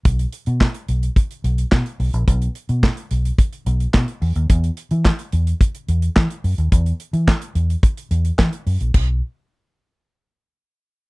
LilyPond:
<<
  \new Staff \with { instrumentName = "Fingered electric bass" } { \clef bass \time 4/4 \key b \major \tempo 4 = 108 b,,8 r16 b,8 r16 b,,8 r8 b,,8 b,16 r16 b,,16 ais,,16 | b,,8 r16 b,8 r16 b,,8 r8 b,,8 b,16 r16 e,16 dis,16 | e,8 r16 e8 r16 e,8 r8 e,8 e16 r16 fis,16 dis,16 | e,8 r16 e8 r16 e,8 r8 e,8 e16 r16 fis,16 ais,,16 |
b,,8 r2. r8 | }
  \new DrumStaff \with { instrumentName = "Drums" } \drummode { \time 4/4 <hh bd>16 hh16 hh16 hh16 <hc bd sn>16 hh16 hh16 hh16 <hh bd>16 hh16 hh16 hh16 <hc bd sn>16 hh16 hho16 hh16 | <hh bd>16 hh16 hh16 hh16 <hc bd sn>16 hh16 hh16 hh16 <hh bd>16 hh16 hh16 hh16 <hc bd sn>16 hh16 hho16 hh16 | <hh bd>16 hh16 hh16 hh16 <hc bd sn>16 hh16 hh16 hh16 <hh bd>16 hh16 hh16 hh16 <hc bd sn>16 hh16 hho16 hh16 | <hh bd>16 hh16 hh16 hh16 <hc bd sn>16 hh16 hh16 hh16 <hh bd>16 hh16 hh16 hh16 <hc bd sn>16 hh16 hho16 hh16 |
<cymc bd>4 r4 r4 r4 | }
>>